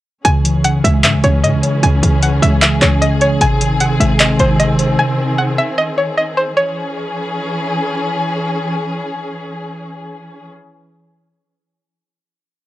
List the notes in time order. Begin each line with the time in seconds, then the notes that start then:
0.25 C#2 C#3 E3 C#4 G#4 G#5, closed hi-hat
0.45 E3, closed hi-hat
0.65 C#3 F#5, closed hi-hat
0.84 C#2 G#3 E5, closed hi-hat
1.04 G#2 C#3 E5, clap, closed hi-hat
1.14 C#2
1.24 C#2 C#4 C#5, closed hi-hat
1.43 G#2 C#3 D#5, closed hi-hat
1.53 C#2
1.63 C#5, closed hi-hat
1.83 C#2 C#3 G#5, closed hi-hat
2.03 C#2 E3, closed hi-hat
2.22 C#3 F#5, closed hi-hat
2.42 C#2 G#3 E5, closed hi-hat
2.62 C#3 E5, clap, closed hi-hat
2.81 C#2 C#4 C#5, clap, closed hi-hat
3.01 C#3 D#5, closed hi-hat
3.21 C#5, closed hi-hat
3.41 G#1 C3 D#3 C4 G#5, closed hi-hat
3.61 D#3, closed hi-hat
3.80 C3 F#5, closed hi-hat
4.00 G#1 G#3 E5, closed hi-hat
4.20 C3 D#5, clap, closed hi-hat
4.39 G#1 C4 C5, closed hi-hat
4.59 C3 D#5, closed hi-hat
4.79 C5, closed hi-hat
4.99 G#5
5.38 F#5
5.58 E5
5.78 D#5
5.98 C#5
6.17 D#5
6.37 C5
6.57 E3 C#4 G#4 C#5